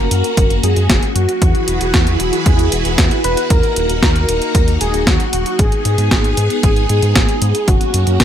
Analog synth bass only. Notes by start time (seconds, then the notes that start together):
0.11 F#2
0.37 F#1
0.63 F#2
0.76 F#2
0.90 F#1
1.16 F#2
1.42 E2
1.68 E1
1.81 E1
1.94 E2
2.20 E1
2.46 E2
2.72 E1
2.85 E1
2.98 E2
3.24 E1
3.50 D#2
3.76 D#1
3.90 D#1
4.03 D#2
4.29 D#1
4.55 D#2
4.81 D#1
4.94 D#1
5.07 D#2
5.33 D#1
5.59 G#1
5.85 G#2
5.98 G#2
6.11 G#1
6.37 G#2
6.63 G#1
6.90 G#2
7.03 G#2
7.16 G#1
7.42 G#2
7.68 F#1
7.94 F#2
8.07 F#2
8.20 F#1